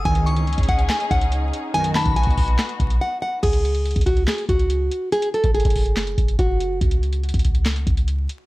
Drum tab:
CC |------------------------------------------------------------------------------------------------|------------------------------------------------------------------------------------------------|x-----------------------------------------------------------------------------------------------|------------------------------------------------------------------------------------------------|
HH |x-----x-----x-----x-----x--x--x--x--x-----x-----x-----x-----x-----x-----x-----------x-----------|x-----x-----x-----x-----x---x---x---o-----x-----x-----x-----x-----x-----------------------------|x-----x-----x-----x-----x--x--x--x--x-----x-----x-----x-----x-----x-----x-----------x-----------|x-----x-----x-----x-----x--x--x--x--o-----x-----x-----x-----x-----x-----x-----------x-----------|
CP |------------------------------------------------x-----------------------------------------------|------------x-----------------------------------x-----------------------------------------------|------------------------------------------------x-----------------------------------------------|------------------------------------------------x-----------------------------------------------|
SD |------------------------------------------------o-----------------------------------------------|------------o-----------------------------------o-----------------------------------------------|------------------------------------------------o-----------------------------------------------|------------------------------------------------o-----------------------------------------------|
BD |o-----------------------------o-----o-----------------------o-----------------------------------|------------------o-----------o-----o-----------------------o-----------------------------------|o-----------------------------o-----o-----------------------o-----------------------------------|------------------o-----------o-----o-----------------------o-----------o-----------------------|

CC |------------------------------------------------------------------------------------------------|
HH |x-----x-----x-----x-----x--x--x--x--x-----x-----x-----x-----x-----x-----x-----------x-----------|
CP |------------------------------------------------x-----------------------------------------------|
SD |------------------------------------------------o-----------------------------------------------|
BD |o-----------------------------o-----o-----------------------o-----------------------------------|